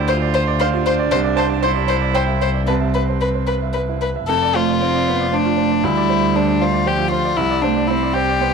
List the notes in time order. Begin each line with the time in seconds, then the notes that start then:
Already playing: D2 E4 C5 D5 G5
0.08 F4 C5
0.22 D5
0.34 C5
0.47 D5
0.60 D4 C5 F5
0.74 F4
0.86 C5
0.99 D5
1.11 C2 C5
1.24 D5
1.36 C5 A5
1.49 D5
1.62 E4 C5 C6
1.75 D5
1.87 C5
2.01 D5
2.14 C5 G5
2.27 E4
2.41 C5
2.54 D5
2.67 C2 C4 B4 A5
2.81 E5
2.94 B4
3.09 C5
3.21 B4
3.35 C5
3.47 B4
3.62 E5
3.73 B4
3.89 E4
4.01 B4
4.16 E5
4.27 F1 F2 A4
4.42 D5
4.54 A3 F4 C5
4.68 D5
4.81 C4 C5
4.94 D5
5.08 B3 C5
5.21 D5
5.32 A3 D4 C5
5.45 F4
5.57 C5
5.71 D5
5.83 D2 G3 E4
5.97 D5
6.09 C5
6.22 D5
6.36 D4 C5
6.48 D5
6.61 F4 C5
6.74 D5
6.86 F3 G4 C5
6.98 F4
7.11 F4 C5
7.24 D5
7.37 C2 E4
7.51 D5
7.62 A3 D4 C5
7.76 D5
7.88 C4 E4 C5
8.03 D5
8.14 G4 C5
8.29 D5
8.40 B3 C5